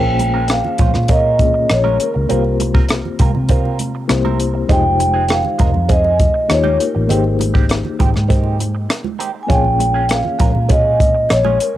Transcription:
Already playing: A#1 A#3 C#4 F4 G#4 G5
0.00 C5
0.19 muted clean electric guitar stroke, closed hi-hat, high conga
0.34 G#3 C#4 F4 A#4
0.48 F5, muted clean electric guitar stroke, cross-stick, closed hi-hat
0.65 muted conga, low conga
0.78 A#1 G#3 C#4 F4 C5, kick, closed hi-hat, high conga
0.94 A#2, cross-stick, high conga, low conga
1.05 F5, closed hi-hat
1.09 G#3 C#4 F4 A#4 D#5, kick, muted conga
1.38 A#3 C#4 F4 G#4 C#5, muted clean electric guitar stroke, kick, closed hi-hat, high conga
1.54 muted clean electric guitar stroke
1.70 A#1 C#5, muted clean electric guitar stroke, cross-stick, closed hi-hat, muted conga
1.84 G#3 C#4 F4 A#4, high conga
2.00 A#4, muted clean electric guitar stroke, closed hi-hat
2.14 C#2, muted clean electric guitar stroke
2.27 C2 G3 A#3 C4 F4, closed hi-hat, muted conga, low conga
2.31 F4 G4 A#4 C5
2.44 muted conga
2.60 muted clean electric guitar stroke, closed hi-hat, high conga
2.74 G3 C4 F4 A#4, kick
2.89 muted clean electric guitar stroke, cross-stick, closed hi-hat
3.05 low conga
3.19 C2 G3 C4 F4 A#4, kick, closed hi-hat, high conga
3.35 C3, muted clean electric guitar stroke, high conga, low conga
3.49 G3 C4 F4 A#4, kick, closed hi-hat, muted conga
3.65 muted conga
3.79 muted clean electric guitar stroke, closed hi-hat, high conga
3.95 muted clean electric guitar stroke
4.08 C2 A#3 C4 E4 G4 C5, muted clean electric guitar stroke, cross-stick, closed hi-hat
4.25 G3 C4 E4 A#4, high conga
4.40 closed hi-hat
4.54 muted clean electric guitar stroke
4.67 F1 G#3 C4 D#4 F4 G#4, kick, closed hi-hat, muted conga, low conga
4.72 G4 C5 G5
4.99 muted clean electric guitar stroke, closed hi-hat, high conga
5.14 G#3 C4 D#4 G#4
5.24 G5
5.29 F5, muted clean electric guitar stroke, cross-stick, closed hi-hat, muted conga
5.45 muted conga, low conga
5.59 F1 G#3 C4 D#4 A#4, kick, closed hi-hat, high conga
5.74 F2, muted clean electric guitar stroke, high conga, low conga
5.89 G#3 C4 D#4 G#4 D#5, kick, closed hi-hat, muted conga
6.04 muted conga
6.19 muted clean electric guitar stroke, kick, closed hi-hat, high conga
6.34 muted clean electric guitar stroke
6.49 D#2 A#3 D#4 F4 G4 C5 C#5, muted clean electric guitar stroke, cross-stick, closed hi-hat
6.58 C#5
6.64 D#3 A#3 C#4 G4, muted conga, high conga
6.80 A#4, muted clean electric guitar stroke, closed hi-hat
6.95 A1, muted clean electric guitar stroke
7.07 G#1 D#3 G#3 A#3 C4 D#4 G4, closed hi-hat, muted conga, low conga
7.11 G4 G#4 C5
7.24 muted conga
7.39 muted clean electric guitar stroke, closed hi-hat, high conga
7.54 D#3 G#3 C4 G4, kick
7.69 muted clean electric guitar stroke, cross-stick, closed hi-hat
7.85 low conga
7.99 G#1 D#3 G#3 C4 G4, kick, closed hi-hat, high conga
8.14 G#2, muted clean electric guitar stroke, cross-stick, high conga, low conga
8.28 D#3 G#3 C4 G4, kick, closed hi-hat, muted conga
8.44 muted conga
8.59 muted clean electric guitar stroke, closed hi-hat, high conga
8.75 muted clean electric guitar stroke
8.89 muted clean electric guitar stroke, cross-stick, closed hi-hat, muted conga
9.04 muted conga, high conga
9.19 D#3 G#3 C4 G4, closed hi-hat
9.34 muted clean electric guitar stroke
9.43 A#3 G#5
9.48 A#1 G#3 C#4 F4 G#4, kick, closed hi-hat, muted conga, low conga
9.52 C#5 G5
9.64 muted conga
9.79 muted clean electric guitar stroke, closed hi-hat, high conga
9.94 G#3 C#4 F4 G#4
10.09 F5, muted clean electric guitar stroke, cross-stick, closed hi-hat, muted conga
10.25 low conga
10.39 A#1 G#3 C#4 F4 A#4, kick, closed hi-hat, high conga
10.54 A#2, muted clean electric guitar stroke, high conga, low conga
10.69 G#3 C#4 F4 G#4 D#5, kick, closed hi-hat, muted conga
10.99 muted clean electric guitar stroke, kick, closed hi-hat, high conga
11.14 muted clean electric guitar stroke
11.29 A#1 C#5, muted clean electric guitar stroke, cross-stick, closed hi-hat, muted conga
11.45 G#3 C#4 F4 G#4, muted conga, high conga
11.60 A#4, muted clean electric guitar stroke, closed hi-hat

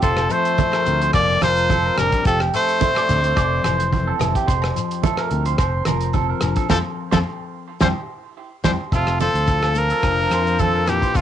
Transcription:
Already playing: C4
0.02 F1 F2 F3 A4 C5, kick, closed hi-hat, muted conga, shekere
0.17 cross-stick, low agogo
0.30 F3 A3 A4 C5, closed hi-hat, shekere
0.45 closed hi-hat, shekere
0.58 A3 A4, kick, closed hi-hat, high conga, shekere
0.72 A#4, cross-stick, low agogo
0.86 D2 C4, closed hi-hat, shekere
1.02 C5, closed hi-hat, shekere
1.13 F1 F2 F3 A#3 C4 D5, muted steel-string acoustic guitar stroke, kick, cross-stick, closed hi-hat, muted conga, low agogo, shekere
1.41 F1 F3 A#4 C5, cross-stick, closed hi-hat, high conga, low agogo, shekere
1.57 closed hi-hat, shekere
1.69 C4 A4, kick, closed hi-hat, high conga, shekere
1.85 A#4
1.96 F1 G3 D4 A#4, cross-stick, closed hi-hat, muted conga, low agogo, shekere
2.12 muted clean electric guitar stroke, kick, closed hi-hat
2.24 F1 F2 F3 G4 A4, kick, closed hi-hat, muted conga, shekere
2.40 cross-stick, low agogo
2.54 A3 A4 C5, closed hi-hat, shekere
2.68 closed hi-hat, shekere
2.80 A3 C5, kick, closed hi-hat, high conga, shekere
2.95 D5, cross-stick, low agogo
3.08 D2 C4, closed hi-hat, low conga, shekere
3.24 C5, closed hi-hat, shekere
3.35 F1 F2 D5, kick, cross-stick, closed hi-hat, muted conga, low agogo, shekere
3.64 F1 E3 C5, cross-stick, closed hi-hat, muted conga, low agogo, shekere
3.80 closed hi-hat, shekere
3.92 C4, muted clean electric guitar stroke, kick, closed hi-hat, high conga, shekere
4.07 A4
4.19 F1 E4, cross-stick, closed hi-hat, muted conga, low conga, low agogo, shekere
4.35 G4, kick, closed hi-hat
4.46 F1 F2 C5, kick, closed hi-hat, muted conga, shekere
4.62 cross-stick, low agogo
4.75 F3, closed hi-hat, shekere
4.91 closed hi-hat, shekere
5.03 A3 A4, kick, closed hi-hat, high conga, shekere
5.17 A#4, cross-stick, low agogo
5.30 D2 C4, closed hi-hat
5.45 C5, closed hi-hat, shekere
5.58 F1 C5, muted steel-string acoustic guitar stroke, kick, cross-stick, closed hi-hat, muted conga, low agogo, shekere
5.85 F1 F3 A#4, cross-stick, closed hi-hat, muted conga, high conga, low agogo, shekere
6.00 closed hi-hat, shekere
6.13 C4 A4, kick, closed hi-hat, high conga, shekere
6.30 A#4
6.41 F1 D4, cross-stick, closed hi-hat, muted conga, low agogo, shekere
6.56 A4, kick, closed hi-hat
6.69 F2 F3 A3 C4 F4 A4 C5, kick, snare, high conga, low agogo, shekere
7.12 F2 F3 A3 C4 F4 A4 C5, kick, snare, high conga, low agogo, shekere
7.80 F2 E3 G3 C4 E4 G4 C5, kick, snare, high conga, low agogo, shekere
8.64 F2 E3 G3 C4 E4 G4 C5, kick, snare, high conga, low agogo, shekere
8.92 F1 C3 C4 F4 A4, muted steel-string acoustic guitar stroke, kick, closed hi-hat, muted conga, shekere
9.07 cross-stick, low agogo
9.20 F3 F4 A4 C5, closed hi-hat, muted conga, high conga, shekere
9.34 D2, closed hi-hat
9.47 F4 A4, kick, closed hi-hat, shekere
9.62 A4, cross-stick, low agogo
9.75 F3 A3 A#4, muted steel-string acoustic guitar stroke, closed hi-hat, shekere
9.90 A4, closed hi-hat
10.03 F1 F2 D4 A#4, kick, cross-stick, closed hi-hat, muted conga, low agogo, shekere
10.30 F2 F4 C5, cross-stick, closed hi-hat, low agogo, shekere
10.47 closed hi-hat
10.59 F3 F4 A4, kick, closed hi-hat, high conga, shekere
10.75 A#4
10.86 A#2 E3 F4 G4, cross-stick, closed hi-hat, muted conga, low agogo, shekere
11.02 C5, kick, closed hi-hat
11.14 F1 F2 C3 C4 F4 A4, kick, closed hi-hat, muted conga, shekere

